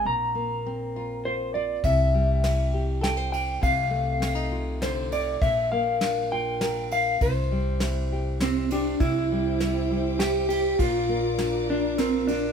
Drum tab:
RD |------|x-x-xx|x-x-xx|x-x-xx|
SD |------|--o-o-|--o-o-|--o-o-|
BD |------|o-----|o-----|o-----|

RD |x-x-xx|x-x-xx|x-x-xx|
SD |--o-o-|--o-o-|--o-o-|
BD |o-----|o-----|o-----|